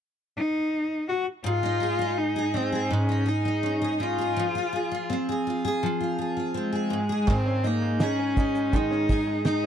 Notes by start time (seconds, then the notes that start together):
0.37 D#4
1.09 F#4
1.44 G#2 F4
1.63 D#4
1.80 G#4
1.99 D#4
2.18 D#4
2.36 G#4
2.54 C4 D#4
2.72 G#4
2.91 G#2 C#4
3.09 D#4
3.26 D#4 G#4
3.45 D#4
3.63 C#4
3.82 G#4
4.00 D#4 F4
4.18 G#4
4.37 F3
4.55 F4
4.73 G#4
4.91 F4
5.10 C4
5.29 G#4
5.47 F4
5.65 G#4
5.83 F3
6.00 F4
6.18 G#4
6.37 F4
6.54 G#3 C4
6.73 G#4
6.90 G#2
7.09 G#4
7.27 G#2 D#3 C4 D#4 G#4, kick, crash
7.46 C#4
7.64 A#3 D#4, shaker
7.82 G#3
8.00 C#4 D#4 G#4, snare, shaker
8.19 C#4
8.37 D#4, kick, shaker
8.55 G#3, shaker
8.73 D#3 G#3 D#4, kick, shaker
8.91 C#4, snare
9.09 D#4 G#4, kick, shaker
9.27 G#3
9.45 D#4, snare, shaker